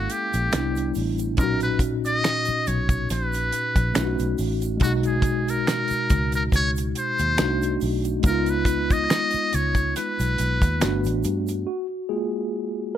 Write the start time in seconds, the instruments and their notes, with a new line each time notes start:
Already playing: tine electric piano G#3 A#3 C#4 F5, muted trumpet F#4
0.10 muted trumpet G4, closed hi-hat, shaker
0.33 fingered electric bass A#1, closed hi-hat, shaker
0.52 fingered electric bass C2, tine electric piano G3 B3 D4, finger snap, snare, closed hi-hat, shaker
0.56 tine electric piano E4
0.76 closed hi-hat, shaker
0.95 fingered electric bass A1, open hi-hat, shaker
1.18 closed hi-hat, shaker
1.34 tine electric piano A#2 C#4, closed hi-hat
1.38 fingered electric bass B1, tine electric piano D#4, muted trumpet A#4, kick, shaker
1.43 tine electric piano F#4
1.60 muted trumpet B4, closed hi-hat, shaker
1.79 kick, closed hi-hat, shaker
2.05 muted trumpet D#5, closed hi-hat, shaker
2.24 finger snap, snare, closed hi-hat, shaker
2.45 muted fingered electric bass stroke, closed hi-hat, shaker
2.67 fingered electric bass B1, muted trumpet C#5, closed hi-hat, shaker
2.89 kick, closed hi-hat, shaker
3.10 fingered electric bass A#1, muted trumpet B4, snare, closed hi-hat, shaker
3.33 closed hi-hat, shaker
3.52 closed hi-hat, shaker
3.76 fingered electric bass A#1, kick, closed hi-hat, shaker
3.94 fingered electric bass B1, tine electric piano A3 C#4 D#4, finger snap, snare, closed hi-hat, shaker
3.98 tine electric piano F4
4.05 tine electric piano F#4
4.19 fingered electric bass B1, closed hi-hat, shaker
4.38 fingered electric bass A1, open hi-hat, shaker
4.62 closed hi-hat, shaker
4.77 tine electric piano B2 G#3, kick, closed hi-hat
4.82 fingered electric bass B1, tine electric piano D#4, muted trumpet F#4, shaker
4.87 tine electric piano F#4
5.03 muted trumpet G#4, closed hi-hat, shaker
5.22 kick, closed hi-hat, shaker
5.48 muted trumpet A#4, closed hi-hat, shaker
5.67 finger snap, snare, closed hi-hat, shaker
5.88 muted fingered electric bass stroke, closed hi-hat, shaker
6.10 fingered electric bass C#2, kick, snare, closed hi-hat, shaker
6.32 muted trumpet A#4, closed hi-hat, shaker
6.52 fingered electric bass C#2, muted trumpet C#5, kick, snare, closed hi-hat, shaker
6.76 closed hi-hat, shaker
6.95 muted trumpet C5, closed hi-hat, shaker
7.19 fingered electric bass D#2, closed hi-hat, shaker
7.37 fingered electric bass C2, tine electric piano A3 D4 D#4, finger snap, snare, closed hi-hat, shaker
7.42 tine electric piano F#4
7.62 closed hi-hat, shaker
7.81 fingered electric bass B1, open hi-hat, shaker
8.04 closed hi-hat, shaker
8.20 tine electric piano G#3 B3, closed hi-hat
8.24 fingered electric bass C#2, tine electric piano D#4, muted trumpet A#4, kick, shaker
8.29 tine electric piano F4
8.46 muted trumpet B4, closed hi-hat, shaker
8.65 kick, closed hi-hat, shaker
8.91 muted trumpet D#5, kick, closed hi-hat, shaker
9.10 finger snap, snare, closed hi-hat, shaker
9.31 muted fingered electric bass stroke, closed hi-hat, shaker
9.53 fingered electric bass C#2, muted trumpet C#5, closed hi-hat, shaker
9.75 kick, closed hi-hat, shaker
9.96 muted trumpet B4, snare, closed hi-hat, shaker
10.20 fingered electric bass B1, closed hi-hat, shaker
10.38 fingered electric bass B1, closed hi-hat, shaker
10.62 fingered electric bass D#2, kick, closed hi-hat, shaker
10.80 fingered electric bass G1, tine electric piano A3 B3 D4, finger snap, snare, closed hi-hat, shaker
10.85 tine electric piano F#4
11.04 fingered electric bass A1, closed hi-hat, shaker
11.24 fingered electric bass G2, closed hi-hat, shaker
11.47 closed hi-hat, shaker
11.67 tine electric piano F#4
12.09 tine electric piano G#3 A#3 F4 G#4